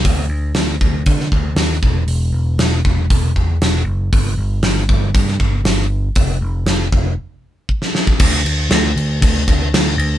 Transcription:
<<
  \new Staff \with { instrumentName = "Picked electric bass" } { \clef bass \time 4/4 \key e \minor \tempo 4 = 118 d,8 d,8 d,8 d,8 d8 d,8 ees,8 e,,8 | e,,8 e,,8 e,,8 e,,8 e,,8 e,8 e,,8 fis,,8 | g,,8 g,,8 g,,8 g,,8 g,8 g,,8 g,,4 | f,,8 f,,8 f,,8 f,,8 r2 |
d,8 d,8 d,8 d,8 d,8 d,8 d,8 d,8 | }
  \new DrumStaff \with { instrumentName = "Drums" } \drummode { \time 4/4 <hho bd>4 <hho sn>8 bd8 <hho bd>16 sn16 bd8 <hho sn>8 bd8 | hho4 <hho sn>8 bd8 <hho bd>8 bd8 <hho sn>4 | <hho bd>4 <hho sn>8 bd8 <hho bd>16 sn16 bd8 <hho sn>4 | <hho bd>4 <hho sn>8 bd8 r4 bd16 sn16 sn16 bd16 |
<cymc bd>8 cymc8 <cymc sn>8 cymc8 <cymc bd>8 <cymc bd>8 <cymc sn>8 cymc8 | }
>>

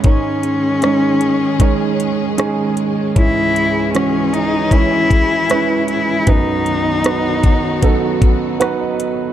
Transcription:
<<
  \new Staff \with { instrumentName = "Cello" } { \time 4/4 \key cis \minor \tempo 4 = 77 cis'2. r4 | e'4 cis'8 dis'8 e'4. e'8 | dis'2. r4 | }
  \new Staff \with { instrumentName = "Grand piano" } { \time 4/4 \key cis \minor << { r1 | r1 | r2. fis''16 dis''8. | } \\ { <gis cis' dis' cis''>4 <gis cis' dis' cis''>4 <gis cis' dis' cis''>4 <gis cis' dis' gis'>4 | <gis cis' e' cis''>4 <e gis cis' fis'>4 <gis cis' e' cis''>4 <gis cis' e' b'>4 | <fis b dis' b'>4 <fis b dis' b'>4 <fis b dis' a'>4 <fis b dis' b'>4 | } >> }
  \new Staff \with { instrumentName = "Grand piano" } { \clef bass \time 4/4 \key cis \minor <gis, dis>1 | <cis, gis,>1 | <b,, fis,>1 | }
  \new Staff \with { instrumentName = "String section" } { \time 4/4 \key cis \minor << { <dis cis' gis'>1 | <e cis' gis'>1 | <dis b fis'>1 | } \\ { gis1~ | gis1 | fis1 | } >> }
  \new DrumStaff \with { instrumentName = "Drums" } \drummode { \time 4/4 <hh bd>8 hh8 <hh ss>8 hh8 <hh bd>8 hh8 <hh ss>8 hh8 | <hh bd>8 hh8 <hh ss>8 hh8 <hh bd>8 <hh bd>8 <hh ss>8 hh8 | <hh bd>8 hh8 <hh ss>8 <hh bd>8 <hh bd>8 <hh bd>8 <hh ss>8 hh8 | }
>>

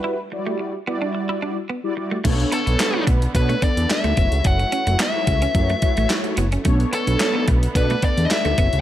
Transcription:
<<
  \new Staff \with { instrumentName = "Lead electric guitar" } { \time 4/4 \key b \minor \tempo 4 = 109 r1 | r8 a'4 r8 b'8 d''8 e''4 | fis''4 e''2 r4 | r8 a'4 r8 b'8 d''16. dis''32 e''8.~ e''32 r32 | }
  \new Staff \with { instrumentName = "Analog polysynth" } { \time 4/4 \key b \minor <g e' fis' b'>16 r16 <fis g e' fis' d''>8. r16 <g e' fis' d''>4~ <g e' fis' d''>16 r8 <g e' fis' d''>16 <g e' fis' d''>16 r16 | <b d' a' cis''>4. r8 <b d' a' cis''>16 r16 <b d' a' d''>4 <a e' fis' cis''>8~ | <a e' fis' cis''>4 r16 <a e' fis' cis''>8 r16 <a e' fis' cis''>16 r16 <a e' fis' cis''>16 <a e' fis' cis''>4 r16 | <b cis' d' a' cis''>4. r8 <b d' a' d''>16 r16 <b d' a' d''>4 <a e' fis' cis''>8 | }
  \new Staff \with { instrumentName = "Clean electric guitar" } { \time 4/4 \key b \minor e'16 r8 a16 r8 b16 d'16 r16 e'16 d'16 r16 b16 r8 a16 | a16 r16 b16 r8 b16 a16 r8 a16 b16 r8 a16 b16 r16 | r8 cis'16 a16 b16 r8 cis'16 r16 a16 r16 a16 r8 b16 cis'16 | a16 r16 b16 r8 b16 a16 r8 a16 b16 r8 a16 b16 r16 | }
  \new Staff \with { instrumentName = "String section" } { \clef bass \time 4/4 \key b \minor r1 | <d a b>2.~ <d a b>8 <e fis>8~ | <e fis>1 | <d b>2.~ <d b>8 <e fis>8 | }
  \new Staff \with { instrumentName = "Analog synth bass" } { \clef bass \time 4/4 \key b \minor r1 | b,,8 r16 b,,16 r8 b,,8 b,8 r16 e,16 r16 d,16 fis,,16 cis,16 | fis,,8 r16 fis,,16 r8 cis,8 fis,8 r16 a,,16 r8 fis,,8 | b,,8 r16 b,,16 r8 b,,8 b,8 r16 e,16 r16 d,16 fis,,16 cis,16 | }
  \new DrumStaff \with { instrumentName = "Drums" } \drummode { \time 4/4 r4 r4 r4 r4 | <cymc hh bd>16 hh16 hh16 hh16 <hc hh sn>8 <hh bd>16 hh16 <hh bd>16 hh16 <hh bd>16 hh16 <hc hh sn>16 hh16 <hh bd>16 hh16 | <hh bd>16 hh16 hh16 hh16 <hc hh sn>8 <hh bd>16 hh16 <hh bd>16 hh16 <hh bd>16 hh16 <hc hh sn>16 hh16 hh16 hh16 | <hh bd>16 hh16 hh16 hh16 <hc hh sn>8 <hh bd>16 hh16 <hh bd>16 hh16 <hh bd>16 hh16 <hc hh sn>16 hh16 <hh bd>16 hh16 | }
>>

